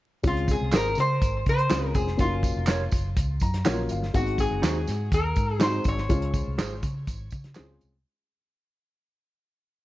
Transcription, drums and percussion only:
0.23 kick loud
0.23 closed hi-hat medium
0.23 tambourine soft
0.37 closed hi-hat soft
0.48 kick medium
0.48 closed hi-hat medium
0.48 tambourine medium
0.72 snare loud
0.72 clap medium
0.72 closed hi-hat medium
0.72 tambourine medium
0.95 closed hi-hat medium
0.95 tambourine medium
1.22 kick medium
1.22 closed hi-hat medium
1.22 tambourine medium
1.46 kick medium
1.46 closed hi-hat medium
1.58 closed hi-hat medium
1.70 snare loud
1.70 clap medium
1.70 closed hi-hat medium
1.70 tambourine medium
1.95 kick medium
1.95 closed hi-hat medium
1.95 tambourine soft
2.07 snare soft
2.19 kick medium
2.19 closed hi-hat medium
2.19 tambourine soft
2.43 kick medium
2.43 closed hi-hat medium
2.43 tambourine medium
2.67 snare medium
2.67 clap medium
2.67 closed hi-hat medium
2.67 tambourine medium
2.91 kick medium
2.91 closed hi-hat medium
2.91 tambourine medium
3.17 kick medium
3.17 closed hi-hat medium
3.17 tambourine soft
3.40 kick medium
3.40 closed hi-hat medium
3.40 tambourine soft
3.54 snare soft
3.54 closed hi-hat medium
3.65 snare loud
3.65 clap medium
3.65 closed hi-hat medium
3.65 tambourine medium
3.89 closed hi-hat medium
3.89 tambourine soft
4.03 snare soft
4.14 kick medium
4.14 closed hi-hat medium
4.14 tambourine soft
4.26 closed hi-hat soft
4.38 kick medium
4.38 closed hi-hat medium
4.38 tambourine soft
4.63 snare medium
4.63 clap medium
4.63 closed hi-hat medium
4.63 tambourine medium
4.87 snare soft
4.87 closed hi-hat medium
4.87 tambourine medium
5.12 kick medium
5.12 closed hi-hat medium
5.12 tambourine medium
5.36 kick medium
5.36 closed hi-hat medium
5.36 tambourine soft
5.60 snare loud
5.60 clap medium
5.60 closed hi-hat medium
5.60 tambourine medium
5.84 kick medium
5.84 closed hi-hat medium
5.84 tambourine soft
5.98 snare soft
6.09 kick loud
6.09 closed hi-hat medium
6.09 tambourine soft
6.22 closed hi-hat soft
6.34 kick medium
6.34 closed hi-hat medium
6.34 tambourine soft
6.59 snare loud
6.59 clap medium
6.59 closed hi-hat medium
6.59 tambourine medium
6.83 kick medium
6.83 closed hi-hat medium
6.83 tambourine medium
7.07 kick medium
7.07 closed hi-hat medium
7.07 tambourine medium
7.31 kick medium
7.31 closed hi-hat medium
7.31 tambourine soft
7.44 snare soft
7.44 closed hi-hat medium
7.55 snare loud
7.55 clap medium
7.55 closed hi-hat medium
7.55 tambourine medium
7.81 closed hi-hat medium
7.81 tambourine soft

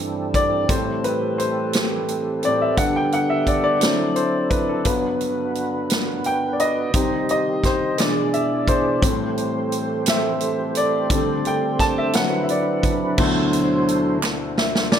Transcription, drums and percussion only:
0.34 kick medium
0.34 closed hi-hat soft
0.69 kick loud
0.69 closed hi-hat medium
1.04 closed hi-hat soft
1.39 closed hi-hat soft
1.73 snare medium
1.73 closed hi-hat medium
2.08 closed hi-hat soft
2.43 closed hi-hat soft
2.77 kick loud
2.77 closed hi-hat medium
3.12 closed hi-hat soft
3.47 kick medium
3.47 closed hi-hat soft
3.81 snare medium
3.81 closed hi-hat medium
4.16 closed hi-hat soft
4.50 kick medium
4.50 closed hi-hat soft
4.85 kick loud
4.85 closed hi-hat medium
5.21 closed hi-hat soft
5.55 closed hi-hat soft
5.90 snare medium
5.90 closed hi-hat medium
6.24 closed hi-hat soft
6.60 closed hi-hat soft
6.94 kick loud
6.94 closed hi-hat medium
7.29 closed hi-hat soft
7.64 kick medium
7.64 snare soft
7.64 closed hi-hat soft
7.98 snare medium
7.98 closed hi-hat medium
8.34 closed hi-hat soft
8.68 kick medium
8.68 closed hi-hat soft
9.02 kick loud
9.02 closed hi-hat medium
9.37 closed hi-hat soft
9.72 closed hi-hat soft
10.06 snare medium
10.06 closed hi-hat medium
10.40 closed hi-hat soft
10.75 closed hi-hat medium
11.10 kick loud
11.10 closed hi-hat medium
11.45 closed hi-hat soft
11.79 kick medium
11.79 snare soft
11.79 closed hi-hat soft
12.13 snare medium
12.13 closed hi-hat medium
12.49 closed hi-hat soft
12.83 kick medium
12.83 closed hi-hat soft
13.18 kick loud
13.18 crash medium
13.53 closed hi-hat soft
13.88 closed hi-hat soft
14.23 snare medium
14.23 clap loud
14.58 snare medium
14.75 snare medium
14.92 snare loud

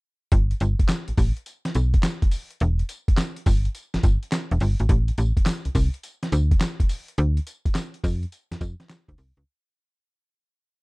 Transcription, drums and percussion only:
0.32 kick loud
0.32 closed hi-hat medium
0.51 closed hi-hat medium
0.60 closed hi-hat medium
0.60 tambourine medium
0.79 kick loud
0.79 closed hi-hat soft
0.88 snare loud
0.88 clap loud
0.88 closed hi-hat medium
0.88 tambourine loud
1.08 closed hi-hat medium
1.17 kick medium
1.17 open hi-hat medium
1.17 tambourine medium
1.37 closed hi-hat medium
1.46 closed hi-hat medium
1.46 tambourine medium
1.65 snare medium
1.65 closed hi-hat medium
1.75 closed hi-hat medium
1.75 tambourine medium
1.94 kick loud
1.94 closed hi-hat soft
2.03 snare loud
2.03 clap loud
2.03 closed hi-hat medium
2.03 tambourine medium
2.22 kick loud
2.22 closed hi-hat medium
2.31 open hi-hat medium
2.31 tambourine medium
2.51 closed hi-hat medium
2.60 closed hi-hat medium
2.79 closed hi-hat medium
2.89 closed hi-hat medium
2.89 tambourine medium
3.08 kick loud
3.08 closed hi-hat soft
3.17 snare loud
3.17 clap loud
3.17 closed hi-hat medium
3.17 tambourine loud
3.36 closed hi-hat medium
3.46 kick medium
3.46 open hi-hat medium
3.46 tambourine medium
3.65 closed hi-hat medium
3.75 closed hi-hat medium
3.75 tambourine medium
3.94 snare medium
3.94 closed hi-hat medium
4.03 kick loud
4.03 closed hi-hat medium
4.03 tambourine medium
4.23 closed hi-hat soft
4.32 snare loud
4.32 clap medium
4.32 closed hi-hat medium
4.32 tambourine loud
4.51 closed hi-hat medium
4.60 open hi-hat medium
4.60 tambourine medium
4.80 closed hi-hat medium
4.89 kick loud
4.89 closed hi-hat medium
5.08 closed hi-hat medium
5.18 closed hi-hat medium
5.18 tambourine medium
5.37 kick medium
5.37 closed hi-hat soft
5.46 snare loud
5.46 clap loud
5.46 closed hi-hat medium
5.46 tambourine loud
5.65 closed hi-hat medium
5.75 kick medium
5.75 open hi-hat medium
5.75 tambourine medium
5.94 closed hi-hat medium
6.03 closed hi-hat medium
6.03 tambourine medium
6.23 snare medium
6.23 closed hi-hat medium
6.32 closed hi-hat medium
6.32 tambourine medium
6.51 kick loud
6.51 closed hi-hat soft
6.60 snare loud
6.60 clap medium
6.60 closed hi-hat medium
6.60 tambourine loud
6.80 kick loud
6.80 closed hi-hat medium
6.89 open hi-hat medium
6.89 tambourine medium
7.08 closed hi-hat medium
7.18 closed hi-hat medium
7.37 closed hi-hat medium
7.47 closed hi-hat medium
7.47 tambourine medium
7.65 kick medium
7.65 closed hi-hat soft
7.75 snare loud
7.75 clap medium
7.75 closed hi-hat medium
7.75 tambourine loud
7.94 closed hi-hat medium
8.04 kick medium
8.04 open hi-hat medium
8.04 tambourine medium
8.23 closed hi-hat medium
8.32 closed hi-hat medium
8.32 tambourine medium
8.52 snare medium
8.52 closed hi-hat medium
8.61 kick loud
8.61 closed hi-hat medium
8.61 tambourine medium
8.80 snare medium
8.80 closed hi-hat soft
8.89 snare loud
8.89 clap loud
8.89 closed hi-hat medium
8.89 tambourine loud
9.08 kick loud
9.08 closed hi-hat medium
9.18 open hi-hat medium
9.18 tambourine medium
9.37 closed hi-hat medium

